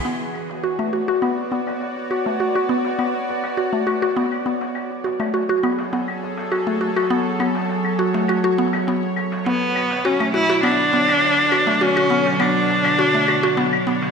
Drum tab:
HH |o--oo--oo--oo--o|o--oo--oo--oo--o|o--oo--oo--oo--o|o--oo--oo--oo--o|
SH |x-xxx-xxx-xxx-xx|--xxx-xxx-xx--xx|x-xxx-xxx-xxx-xx|--xxx-xxx-xxx-xx|
CL |--x--x--x--x--x-|-x--x--x--x--x--|x--x--x--x--x--x|--x--x--x--x--x-|

HH |o--oo--oo--oo--o|o--oo--oo--oo--o|
SH |x-xxx-xxx-xxx-xx|x-xxx-xx--xx--xx|
CL |--x--x--x--x--x-|-x--x--x--x--x--|